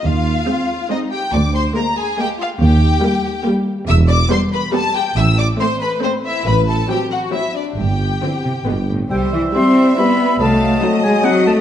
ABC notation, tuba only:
X:1
M:3/4
L:1/8
Q:1/4=140
K:Eb
V:1 name="Tuba" clef=bass
E,,2 z4 | D,,2 z4 | E,,2 z4 | [K:C] E,,,2 z4 |
A,,,2 z4 | A,,,2 z4 | G,,,2 z2 G,,,2 | z6 |
z6 |]